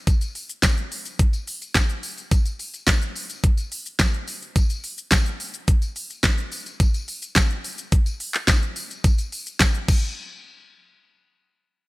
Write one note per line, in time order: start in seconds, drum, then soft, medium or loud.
0.07 kick loud
0.07 closed hi-hat medium
0.07 tambourine medium
0.07 shaker medium
0.21 tambourine medium
0.21 shaker medium
0.35 open hi-hat medium
0.35 tambourine soft
0.35 shaker medium
0.49 shaker medium
0.63 kick loud
0.63 snare loud
0.63 clap loud
0.63 closed hi-hat medium
0.63 tambourine loud
0.63 shaker medium
0.77 shaker medium
0.92 open hi-hat medium
0.92 tambourine soft
0.92 shaker medium
1.05 tambourine soft
1.05 shaker medium
1.19 kick loud
1.19 closed hi-hat medium
1.19 shaker medium
1.33 tambourine medium
1.33 shaker soft
1.47 open hi-hat medium
1.47 shaker medium
1.61 tambourine soft
1.61 shaker medium
1.75 kick loud
1.75 snare medium
1.75 clap loud
1.75 closed hi-hat medium
1.75 tambourine medium
1.75 shaker medium
1.89 shaker medium
2.03 open hi-hat medium
2.03 tambourine medium
2.03 shaker medium
2.17 tambourine soft
2.17 shaker medium
2.31 kick loud
2.31 closed hi-hat medium
2.31 tambourine medium
2.31 shaker medium
2.45 tambourine medium
2.45 shaker medium
2.59 open hi-hat medium
2.59 tambourine soft
2.59 shaker medium
2.74 tambourine soft
2.74 shaker medium
2.87 kick loud
2.87 snare loud
2.87 clap loud
2.87 closed hi-hat medium
2.87 tambourine loud
2.87 shaker medium
3.02 shaker medium
3.15 open hi-hat medium
3.15 tambourine soft
3.15 shaker medium
3.30 tambourine soft
3.30 shaker medium
3.44 kick loud
3.44 closed hi-hat medium
3.44 shaker medium
3.57 tambourine medium
3.57 shaker medium
3.72 open hi-hat medium
3.72 shaker medium
3.86 shaker medium
3.99 kick loud
3.99 snare medium
3.99 clap loud
3.99 closed hi-hat medium
3.99 tambourine medium
3.99 shaker medium
4.14 shaker medium
4.28 open hi-hat medium
4.28 tambourine medium
4.28 shaker medium
4.42 shaker medium
4.56 kick loud
4.56 closed hi-hat medium
4.56 tambourine medium
4.56 shaker medium
4.70 tambourine medium
4.70 shaker medium
4.84 open hi-hat medium
4.84 tambourine soft
4.84 shaker medium
4.98 shaker medium
5.11 kick loud
5.11 snare loud
5.11 clap loud
5.11 closed hi-hat medium
5.11 tambourine loud
5.11 shaker medium
5.26 shaker medium
5.40 open hi-hat medium
5.40 tambourine medium
5.40 shaker medium
5.54 shaker medium
5.68 kick loud
5.68 closed hi-hat medium
5.68 shaker medium
5.82 tambourine medium
5.82 shaker medium
5.96 open hi-hat medium
5.96 shaker medium
6.10 tambourine soft
6.10 shaker medium
6.23 kick loud
6.23 snare medium
6.23 clap loud
6.23 closed hi-hat medium
6.23 tambourine medium
6.23 shaker medium
6.38 shaker medium
6.52 open hi-hat medium
6.52 tambourine medium
6.52 shaker medium
6.66 tambourine soft
6.66 shaker medium
6.80 kick loud
6.80 closed hi-hat medium
6.80 tambourine medium
6.80 shaker medium
6.94 tambourine medium
6.94 shaker medium
7.08 open hi-hat medium
7.08 tambourine soft
7.08 shaker medium
7.22 tambourine soft
7.22 shaker medium
7.35 kick loud
7.35 snare loud
7.35 clap loud
7.35 closed hi-hat medium
7.35 tambourine loud
7.35 shaker medium
7.50 shaker medium
7.64 open hi-hat medium
7.64 tambourine soft
7.64 shaker medium
7.78 tambourine soft
7.78 shaker medium
7.92 kick loud
7.92 closed hi-hat medium
7.92 shaker medium
8.06 tambourine medium
8.06 shaker medium
8.20 open hi-hat medium
8.20 shaker medium
8.34 clap medium
8.34 tambourine soft
8.34 shaker medium
8.48 kick loud
8.48 snare medium
8.48 clap loud
8.48 closed hi-hat medium
8.48 tambourine medium
8.48 shaker medium
8.62 shaker medium
8.76 open hi-hat medium
8.76 tambourine medium
8.76 shaker medium
8.90 tambourine soft
8.90 shaker medium
9.04 kick loud
9.04 closed hi-hat medium
9.04 tambourine medium
9.04 shaker medium
9.18 tambourine medium
9.18 shaker medium
9.32 open hi-hat medium
9.32 tambourine soft
9.32 shaker medium
9.46 tambourine soft
9.46 shaker medium
9.60 kick loud
9.60 snare loud
9.60 clap loud
9.60 closed hi-hat medium
9.60 tambourine medium
9.60 shaker medium
9.74 shaker medium
9.88 kick loud
9.88 crash medium
9.88 tambourine medium